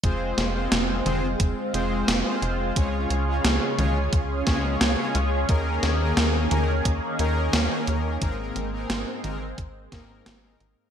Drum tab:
HH |xxxxxxxx|xxxxxxxx|xxxxxxxx|xxxxxxxx|
SD |-oo---o-|--o--oo-|-oo---o-|--o--oo-|
T2 |---o----|---o----|---o----|---o----|
BD |o---o---|o---oo--|o---o---|o---oo--|